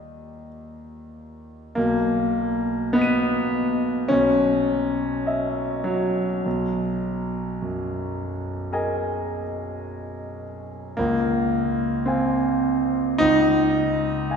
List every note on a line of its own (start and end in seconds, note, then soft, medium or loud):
0.00 1.70 D#2 soft
0.00 1.70 D#3 soft
0.00 1.71 G3 soft
0.00 1.72 F4 soft
0.00 1.72 A#4 soft
0.00 0.47 D#5 medium
1.75 4.06 B1 medium
1.75 2.94 A#3 medium
2.93 4.09 B3 medium
2.93 4.06 D#5 soft
2.93 4.06 F#6 soft
2.99 4.07 B6 soft
2.99 3.03 D#7 soft
3.04 4.10 D#7 soft
4.08 6.42 B1 medium
4.08 5.85 C#4 medium
5.26 6.41 D#5 soft
5.26 6.42 E5 soft
5.84 10.43 F#3 medium
6.46 10.93 B1 soft
7.62 9.41 F#2 soft
8.72 10.93 G#4 soft
8.72 10.94 A#4 soft
8.72 10.94 D#5 soft
8.72 10.94 G#5 soft
10.97 13.15 C#2 soft
10.97 12.06 A#3 medium
12.06 13.18 C4 medium
12.06 13.15 F5 soft
12.06 13.15 G#5 soft
13.18 14.37 C#2 medium
13.18 14.37 D#4 loud
14.31 14.37 F5 soft
14.31 14.37 G#5 soft